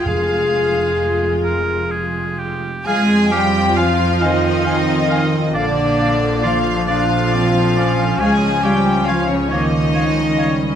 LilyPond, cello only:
\new Staff \with { instrumentName = "Cello" } { \time 6/8 \key f \minor \tempo 4. = 45 r2. | aes'8 g'8 f'8 ees'4. | d'4 f'8 f'4. | aes'8 g'8 f'16 des'16 ees'4. | }